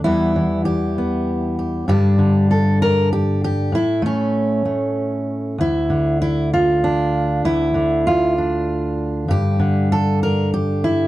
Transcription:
0.04 1.85 E2 medium
0.04 0.34 E3 soft
0.04 1.87 G3 soft
0.04 0.97 B3 soft
0.04 0.65 E4 medium
0.36 1.85 E3 medium
0.65 1.58 G4 medium
0.98 1.86 B3 soft
1.59 1.85 G4 soft
1.88 3.69 G2 medium
1.88 2.17 D3 soft
1.88 3.73 G3 soft
1.88 3.70 D4 soft
1.88 2.50 G4 medium
2.18 3.73 D3 medium
2.51 2.81 A4 medium
2.82 3.12 A#4 loud
3.13 3.43 G4 medium
3.44 3.74 G4 loud
3.72 5.58 A2 medium
3.72 4.05 E4 medium
4.02 4.65 A3 medium
4.02 5.60 C#4 medium
4.65 5.55 A3 soft
5.58 7.43 D2 medium
5.58 6.20 E4 loud
5.90 7.73 D3 medium
6.22 6.52 E4 loud
6.53 7.45 F4 medium
6.84 7.45 D4 medium
7.45 9.28 D2 medium
7.45 8.37 E4 loud
7.74 9.58 D3 medium
8.07 9.29 F4 medium
8.38 9.26 D4 soft
9.28 11.07 G2 medium
9.28 9.91 G4 loud
9.59 11.07 D3 medium
9.92 10.22 A4 loud
10.23 10.53 A#4 medium
10.54 11.07 G4 medium
10.84 11.07 E4 medium

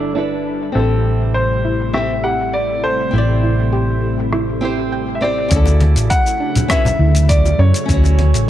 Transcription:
0.00 0.73 G1 medium
0.00 0.72 D3 medium
0.00 5.47 G3 medium
0.00 0.12 D4 medium
0.00 0.13 E4 medium
0.00 0.71 E4 medium
0.00 0.13 A4 medium
0.00 0.41 A4 medium
0.00 0.72 A4 medium
0.00 0.14 D5 medium
0.00 shaker medium
0.15 0.72 D4 medium
0.15 0.72 E4 medium
0.15 0.33 E4 medium
0.15 0.73 A4 medium
0.15 0.73 B4 medium
0.15 shaker soft
0.32 shaker soft
0.62 shaker medium
0.72 3.10 A1 medium
0.72 5.47 C3 medium
0.72 5.47 A3 medium
0.72 1.89 C4 medium
0.72 0.92 C4 medium
0.72 1.90 E4 medium
0.72 5.47 E4 medium
0.72 1.31 A4 medium
0.76 1.92 G4 medium
0.76 1.93 C5 medium
0.76 shaker soft
0.91 shaker soft
1.21 shaker medium
1.34 1.90 C5 medium
1.34 shaker soft
1.51 shaker soft
1.65 1.81 E4 medium
1.81 shaker medium
1.93 2.10 C4 medium
1.93 2.11 E4 medium
1.93 2.12 G4 medium
1.93 2.12 C5 medium
1.93 2.22 E5 medium
1.93 cross-stick medium
1.93 shaker soft
2.11 shaker soft
2.24 2.51 G4 medium
2.24 2.51 F#5 medium
2.40 shaker medium
2.53 2.81 D5 medium
2.53 shaker soft
2.70 shaker soft
2.83 3.10 A4 medium
2.83 4.88 C5 loud
3.00 shaker medium
3.11 5.48 A1 medium
3.11 4.57 C4 medium
3.11 4.58 E4 medium
3.15 4.60 G4 medium
3.15 4.61 D5 medium
3.15 shaker soft
3.30 shaker soft
3.43 3.70 E4 medium
3.59 shaker medium
3.73 3.99 G4 loud
3.73 shaker soft
3.89 shaker soft
4.19 shaker medium
4.32 4.49 E4 loud
4.32 cross-stick medium
4.32 shaker medium
4.49 shaker soft
4.61 5.17 C4 medium
4.61 5.18 E4 medium
4.61 4.79 E4 medium
4.61 5.18 G4 medium
4.61 5.19 C5 medium
4.79 shaker medium
4.92 5.19 G5 medium
4.92 shaker soft
5.08 shaker soft
5.15 5.21 E5 medium
5.21 5.47 C4 medium
5.21 5.48 E4 medium
5.21 5.48 G4 medium
5.21 5.49 C5 medium
5.21 6.07 D5 loud
5.37 shaker medium
5.49 5.96 D2 loud
5.49 6.65 C#3 medium
5.49 8.50 C#3 medium
5.49 8.50 F#3 medium
5.49 8.50 A3 medium
5.49 5.78 C#4 loud
5.49 7.86 E4 medium
5.49 6.66 E4 medium
5.49 kick loud
5.49 closed hi-hat medium
5.49 shaker medium
5.53 6.67 F#4 medium
5.53 6.69 A4 loud
5.66 high bongo medium
5.66 shaker soft
5.80 closed hi-hat soft
5.80 high conga medium
5.96 6.07 A1 loud
5.96 closed hi-hat soft
5.96 shaker medium
6.10 6.71 F#5 loud
6.10 kick loud
6.10 closed hi-hat medium
6.10 shaker medium
6.26 shaker soft
6.40 6.67 D4 medium
6.55 closed hi-hat soft
6.55 low conga medium
6.55 shaker medium
6.68 6.86 C#4 medium
6.68 6.86 E4 medium
6.68 6.87 F#4 medium
6.68 6.87 B4 medium
6.68 7.31 E5 loud
6.68 kick loud
6.68 cross-stick medium
6.68 closed hi-hat medium
6.68 shaker medium
6.85 high bongo medium
6.85 low conga medium
6.85 shaker soft
6.99 7.54 D2 medium
6.99 7.28 E4 medium
7.15 closed hi-hat soft
7.15 shaker medium
7.29 7.60 D5 medium
7.29 kick loud
7.29 closed hi-hat medium
7.29 shaker medium
7.45 high bongo medium
7.45 shaker soft
7.59 7.71 F#2 medium
7.59 7.86 C#4 medium
7.59 8.50 C#5 medium
7.74 closed hi-hat soft
7.74 shaker medium
7.86 8.33 D2 loud
7.86 8.50 C#4 medium
7.86 8.50 E4 medium
7.86 8.50 F#4 medium
7.86 kick loud
7.86 closed hi-hat medium
7.90 8.50 F#4 medium
7.90 8.50 C#5 medium
7.90 shaker medium
8.04 high bongo medium
8.04 shaker soft
8.19 closed hi-hat soft
8.19 high conga medium
8.33 8.45 A1 loud
8.33 closed hi-hat soft
8.33 shaker medium

